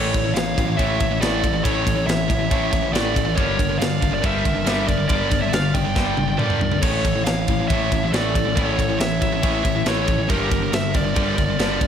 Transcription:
Already playing: picked electric bass A1, distorted electric guitar A2 E3 A3, lead electric guitar A4 C#5
0.13 distorted electric guitar A2 E3, kick, ride
0.24 distorted electric guitar A2 E3
0.31 distorted electric guitar A2 E3, lead electric guitar C#5 F5
0.35 picked electric bass A1, snare, ride
0.57 picked electric bass A1, distorted electric guitar A2 E3, kick, ride
0.68 distorted electric guitar A2 E3
0.76 picked electric bass A1, distorted electric guitar A2 E3 A3, lead electric guitar C#5 E5, kick, ride
1.00 picked electric bass A1, distorted electric guitar A2 E3, kick, ride
1.10 distorted electric guitar A2 E3
1.20 picked electric bass A1, distorted electric guitar A2 E3 A3, lead electric guitar A4 D5, snare, ride
1.44 distorted electric guitar A2 E3, kick, ride
1.53 distorted electric guitar A2 E3
1.63 picked electric bass A1, distorted electric guitar A2 E3 A3, lead electric guitar A4 C#5, kick, ride
1.85 distorted electric guitar A2 E3, kick, ride
1.95 distorted electric guitar A2 E3
2.06 picked electric bass A1, distorted electric guitar A2 E3, lead electric guitar C#5 E5, snare, ride
2.29 picked electric bass A1, distorted electric guitar A2 E3, kick, ride
2.38 distorted electric guitar A2 E3
2.50 picked electric bass A1, distorted electric guitar A2 E3 A3, kick, ride
2.71 picked electric bass A1, distorted electric guitar A2 E3, kick, ride
2.82 distorted electric guitar A2 E3
2.92 picked electric bass A1, distorted electric guitar A2 E3 A3, lead electric guitar A4 D5, snare, ride
3.14 distorted electric guitar A2 E3, kick, ride
3.25 distorted electric guitar A2 E3
3.34 picked electric bass G1, distorted electric guitar G2 D3 G3, lead electric guitar A#4 C#5, kick, ride
3.59 distorted electric guitar G2 D3, kick, ride
3.70 distorted electric guitar G2 D3
3.78 picked electric bass G1, distorted electric guitar G2 D3, lead electric guitar D5 F5, snare, ride
4.00 picked electric bass G1, distorted electric guitar G2 D3, kick, ride
4.11 distorted electric guitar G2 D3, lead electric guitar A#4 D5
4.19 distorted electric guitar G2 D3 G3, lead electric guitar A#4
4.24 picked electric bass G1, lead electric guitar E5, kick, ride
4.44 picked electric bass G1, distorted electric guitar G2 D3, kick, ride
4.55 distorted electric guitar G2 D3
4.65 picked electric bass G1, distorted electric guitar G2 D3 G3, snare, ride
4.84 distorted electric guitar G2 D3, lead electric guitar A#4 D5
4.89 kick, ride
4.97 distorted electric guitar G2 D3
5.08 picked electric bass G1, distorted electric guitar G2 D3 G3, lead electric guitar A#4 D5, kick, ride
5.30 distorted electric guitar G2 D3, kick, ride
5.39 distorted electric guitar G2 D3, lead electric guitar C#5 E5
5.48 lead electric guitar D5
5.52 picked electric bass G1, distorted electric guitar G2 D3, lead electric guitar F5, snare, ride
5.69 lead electric guitar D5
5.74 picked electric bass G1, distorted electric guitar G2 D3, lead electric guitar G5, kick, ride
5.86 distorted electric guitar G2 D3
5.95 picked electric bass G1, distorted electric guitar G2 D3 G3, kick, snare
6.17 picked electric bass G1, distorted electric guitar G2 D3, high tom
6.28 distorted electric guitar G2 D3
6.39 picked electric bass G1, distorted electric guitar G2 D3 G3, lead electric guitar A#4 D5, mid tom
6.50 mid tom
6.61 distorted electric guitar G2 D3, floor tom
6.71 distorted electric guitar G2 D3, floor tom
6.79 lead electric guitar A4 C#5, kick, crash, ride
6.83 picked electric bass A1, distorted electric guitar A2 E3 A3
7.05 distorted electric guitar A2 E3, kick, ride
7.16 distorted electric guitar A2 E3
7.24 picked electric bass A1, distorted electric guitar A2, lead electric guitar C#5 F5, snare, ride
7.29 distorted electric guitar E3
7.48 picked electric bass A1, distorted electric guitar A2 E3, kick, ride
7.61 distorted electric guitar A2 E3
7.68 picked electric bass A1, lead electric guitar C#5 E5, kick, ride
7.72 distorted electric guitar A2 E3 A3
7.91 picked electric bass A1, distorted electric guitar A2 E3, kick, ride
8.04 distorted electric guitar A2 E3
8.12 picked electric bass A1, distorted electric guitar A2 E3 A3, lead electric guitar A4 D5, snare, ride
8.35 distorted electric guitar A2 E3, kick, ride
8.47 distorted electric guitar A2 E3
8.53 picked electric bass A1, distorted electric guitar A2, lead electric guitar A4 C#5, kick, ride
8.58 distorted electric guitar E3 A3
8.78 distorted electric guitar A2 E3, kick, ride
8.88 distorted electric guitar A2 E3
8.98 picked electric bass A1, distorted electric guitar A2 E3, lead electric guitar C#5 E5, snare, ride
9.21 picked electric bass A1, distorted electric guitar A2 E3, kick, ride
9.32 distorted electric guitar A2 E3
9.42 picked electric bass A1, distorted electric guitar A2 E3 A3, kick, ride
9.64 picked electric bass A1, distorted electric guitar A2 E3, kick, ride
9.75 distorted electric guitar A2 E3
9.85 picked electric bass A1, distorted electric guitar A2 E3 A3, lead electric guitar A4 C#5, snare, ride
10.07 distorted electric guitar A2 E3, kick, ride
10.18 distorted electric guitar A2 E3
10.28 picked electric bass G1, distorted electric guitar G2 D3 G3, lead electric guitar G4 A#4, kick, ride
10.50 distorted electric guitar G2 D3, kick, ride
10.60 distorted electric guitar G2 D3
10.72 picked electric bass G1, distorted electric guitar G2 D3, lead electric guitar A#4 E5, snare, ride
10.92 picked electric bass G1, distorted electric guitar G2 D3, lead electric guitar A#4, kick, ride
10.97 lead electric guitar D5
11.03 distorted electric guitar G2 D3
11.14 picked electric bass G1, distorted electric guitar G2 D3 G3, kick, ride
11.36 picked electric bass G1, distorted electric guitar G2 D3, kick, ride
11.48 distorted electric guitar G2 D3
11.58 picked electric bass G1, distorted electric guitar G2 D3 G3, snare, ride
11.81 distorted electric guitar G2 D3, kick, ride

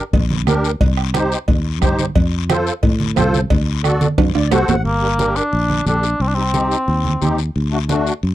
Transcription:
0.13 fingered electric bass A#1, bombo low, cowbell, high conga, low conga, long guiro
0.30 high conga
0.47 fingered electric bass D2, accordion D4 G4 A#4, bombo rim, high conga, low timbale, short guiro
0.64 short guiro
0.80 fingered electric bass C2, bombo low, cowbell, high conga, low conga, long guiro
0.97 bombo rim
1.14 accordion D#4 G4 C5, bombo rim, high conga, short guiro
1.32 short guiro
1.48 fingered electric bass D#2, bombo low, cowbell, high conga, low conga, long guiro
1.81 fingered electric bass G2, accordion D#4 G4 C5, bombo low, bombo rim, high conga, low conga, short guiro
1.99 high conga, short guiro
2.15 fingered electric bass F2, bombo low, cowbell, high conga, low conga, long guiro
2.49 accordion F4 A4 C5, bombo rim, high conga, short guiro
2.67 short guiro
2.83 fingered electric bass A2, bombo low, cowbell, high conga, low conga, long guiro
3.00 high conga
3.16 fingered electric bass C2, accordion F4 A4 C5, bombo rim, high conga, low conga, low timbale, short guiro
3.34 high conga, short guiro
3.50 fingered electric bass D2, bombo low, cowbell, high conga, low conga, long guiro
3.83 accordion F#4 A4 D5, bombo rim, high conga, short guiro
4.01 high conga, short guiro
4.18 fingered electric bass F#2, bombo low, cowbell, high conga, high timbale, long guiro
4.35 fingered electric bass D2, accordion D5, high timbale
4.51 fingered electric bass C2, accordion F#4 A4 C5 F#5, bombo rim, low conga, low timbale, short guiro
4.68 fingered electric bass A1, low conga, low timbale, short guiro
4.85 fingered electric bass G1, cor anglais A#3, high conga, long guiro
5.02 accordion D4 G4 A#4
5.18 accordion D4 G4 A#4, high conga, short guiro
5.36 cor anglais D4, short guiro
5.53 fingered electric bass A#1, high conga, long guiro
5.70 high conga
5.86 fingered electric bass A#1, accordion D4 G4 A4, cor anglais D4, high conga, short guiro
6.03 short guiro
6.20 fingered electric bass C2, cor anglais C4, high conga, long guiro
6.28 cor anglais D4
6.35 cor anglais C4, accordion C4 D#4 G4
6.53 accordion C4 D#4 G4, high conga, short guiro
6.71 short guiro
6.88 fingered electric bass D#2, high conga, long guiro
7.05 high conga
7.21 fingered electric bass D#2, accordion C4 D#4 G4, high conga, short guiro
7.38 short guiro
7.56 fingered electric bass D2, high conga, long guiro
7.72 accordion A3 D4 F#4
7.89 accordion A3 D4 F#4, high conga, short guiro
8.07 short guiro
8.23 fingered electric bass F#2, high conga, long guiro

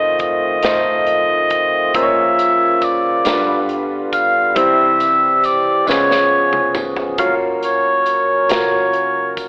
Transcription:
Already playing: fingered electric bass F1, tonewheel organ D#3 A3 C4 F4, grand piano A3 D#4 F4 C5, oboe D#5
0.19 oboe D#5, kick, closed hi-hat
0.63 fingered electric bass F1, grand piano A3 D#4 F4 C5, tonewheel organ C4, snare, closed hi-hat
1.07 closed hi-hat
1.50 kick, closed hi-hat
1.94 fingered electric bass A#1, grand piano A#2 A#3 C#4 F4 C5, tonewheel organ C#3 F3 A#3 F4, oboe E5, kick, closed hi-hat
2.03 grand piano C#5
2.39 closed hi-hat, tambourine
2.82 oboe D5, kick, closed hi-hat, tambourine
3.24 fingered electric bass G1, grand piano G2 G3 D4 F4 A#4, tonewheel organ D3 G3 B3, snare, closed hi-hat, tambourine
3.33 grand piano B4
3.69 closed hi-hat
4.13 oboe F5, kick, closed hi-hat, tambourine
4.55 fingered electric bass C2, grand piano C3 G3 C4 E4 C5, tonewheel organ E3 C4 G4, oboe E5, kick, closed hi-hat
5.00 closed hi-hat, tambourine
5.44 oboe D5, closed hi-hat, tambourine
5.87 fingered electric bass C#2, grand piano C#3 G#3 C#4 F4 B4, tonewheel organ F3 B3 C#4 G#4, oboe C#5, snare, tambourine
6.11 snare
6.53 mid tom
6.75 mid tom, tambourine
6.96 floor tom
7.18 fingered electric bass F#1, tonewheel organ F#3 C#4 A#4, grand piano A3 F4 F#4 C#5, oboe F5, kick, closed hi-hat
7.24 grand piano A#3
7.63 oboe C#5, closed hi-hat, tambourine
8.06 closed hi-hat, tambourine
8.49 fingered electric bass C#2, grand piano A#3 F4 F#4 A#4, oboe C#5, snare, closed hi-hat, tambourine
8.93 closed hi-hat
9.37 kick, closed hi-hat, tambourine

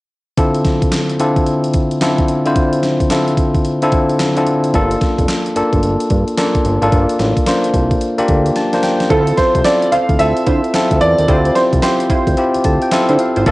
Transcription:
0.38 tine electric piano D3 C4 E4 F4 A4, kick, closed hi-hat
0.55 closed hi-hat
0.65 kick, snare, closed hi-hat
0.82 kick, closed hi-hat
0.92 snare, clap, closed hi-hat
1.10 closed hi-hat
1.19 tine electric piano D3 C4 E4 F4 A4, closed hi-hat
1.36 kick, closed hi-hat
1.46 closed hi-hat
1.64 closed hi-hat
1.74 kick, closed hi-hat
1.91 closed hi-hat
2.01 tine electric piano D3 C4 E4 F4 A4, snare, clap, closed hi-hat
2.18 kick, closed hi-hat
2.28 closed hi-hat
2.46 tine electric piano D3 C4 E4 F4 C5, closed hi-hat
2.56 kick, closed hi-hat
2.73 closed hi-hat
2.83 snare, closed hi-hat
3.00 kick, closed hi-hat
3.10 tine electric piano D3 C4 E4 F4 A4, snare, clap, closed hi-hat
3.28 closed hi-hat
3.37 kick, closed hi-hat
3.55 kick, closed hi-hat
3.65 closed hi-hat
3.82 tine electric piano D3 C4 E4 F4 A4, closed hi-hat
3.92 kick, closed hi-hat
4.09 closed hi-hat
4.19 snare, clap, closed hi-hat
4.37 tine electric piano D3 C4 E4 F4 A4, closed hi-hat
4.47 closed hi-hat
4.64 closed hi-hat
4.74 analog synth bass G1, tine electric piano A#3 D4 F4 A4, kick, closed hi-hat
4.91 closed hi-hat
5.01 kick, snare, closed hi-hat
5.19 analog synth bass F1, kick, closed hi-hat
5.28 snare, clap, closed hi-hat
5.46 closed hi-hat
5.56 analog synth bass G1, tine electric piano A#3 D4 F4 A4, closed hi-hat
5.73 analog synth bass G1, kick, closed hi-hat
5.83 analog synth bass G1, closed hi-hat
6.00 closed hi-hat
6.10 analog synth bass G2, kick, closed hi-hat
6.28 closed hi-hat
6.38 tine electric piano A#3 D4 F4 A4, snare, clap, closed hi-hat
6.55 kick, closed hi-hat
6.65 analog synth bass G1, closed hi-hat
6.82 analog synth bass G#1, tine electric piano A#3 D4 F4 A4, closed hi-hat
6.92 analog synth bass G1, kick, closed hi-hat
7.09 closed hi-hat
7.19 analog synth bass A1, snare, closed hi-hat
7.37 kick, closed hi-hat
7.46 tine electric piano A#3 D4 F4 C5, snare, clap, closed hi-hat
7.64 closed hi-hat
7.74 analog synth bass C2, kick, closed hi-hat
7.91 kick, closed hi-hat
8.01 closed hi-hat
8.18 analog synth bass D2, tine electric piano A#3 D4 F4 G4, closed hi-hat
8.28 analog synth bass D2, kick, closed hi-hat
8.46 closed hi-hat
8.56 tine electric piano A5, snare, closed hi-hat
8.73 tine electric piano A#3 D4 F4 C5, snare, closed hi-hat
8.83 tine electric piano G5, snare, closed hi-hat
9.00 snare, closed hi-hat
9.10 analog synth bass D2, tine electric piano C4 E4 F4 A4, analog polysynth E4 F4 C5, grand piano A4, kick, closed hi-hat
9.27 closed hi-hat
9.37 grand piano C5, kick, snare, closed hi-hat
9.55 analog synth bass C2, kick, closed hi-hat
9.64 tine electric piano C4 E4 F4 A4, grand piano D5, snare, clap, closed hi-hat
9.82 closed hi-hat
9.92 analog synth bass D2, analog polysynth E4 F4 C5, grand piano F5, closed hi-hat
10.09 analog synth bass D2, kick, closed hi-hat
10.19 analog synth bass D2, tine electric piano C4 E4 F4 A4, grand piano E5, closed hi-hat
10.37 closed hi-hat
10.46 analog synth bass D3, analog polysynth E4 F4 C5, kick, closed hi-hat
10.64 closed hi-hat
10.74 tine electric piano C4 E4 F4 A4, snare, clap, closed hi-hat
10.91 analog synth bass D2, kick, closed hi-hat
11.01 analog synth bass E2, grand piano D5, closed hi-hat
11.18 analog synth bass D#2, closed hi-hat
11.28 analog synth bass D2, tine electric piano C4 E4 F4 G4, analog polysynth E4 F4 C5, kick, closed hi-hat
11.45 closed hi-hat
11.55 grand piano C5, snare, closed hi-hat
11.73 analog synth bass C2, kick, closed hi-hat
11.83 tine electric piano C4 E4 F4 G4, grand piano C5, snare, clap, closed hi-hat
12.00 closed hi-hat
12.10 analog synth bass D2, analog polysynth E4 F4 C5, kick, closed hi-hat
12.27 analog synth bass D2, kick, closed hi-hat
12.37 tine electric piano C4 E4 F4 G4, closed hi-hat
12.55 analog synth bass D2, closed hi-hat
12.64 analog synth bass D2, tine electric piano A5, kick, closed hi-hat
12.82 tine electric piano G5, closed hi-hat
12.92 tine electric piano C4 E4 F4 A4 F5, snare, clap, closed hi-hat
13.09 analog synth bass D3, analog polysynth E4 F4 C5, closed hi-hat
13.19 tine electric piano F5, closed hi-hat
13.36 analog synth bass G#1, analog polysynth E4 F4 C5, closed hi-hat
13.46 analog synth bass G1, analog polysynth A#3 F4 A4, tine electric piano A#3 D4 F4 A4, kick, closed hi-hat

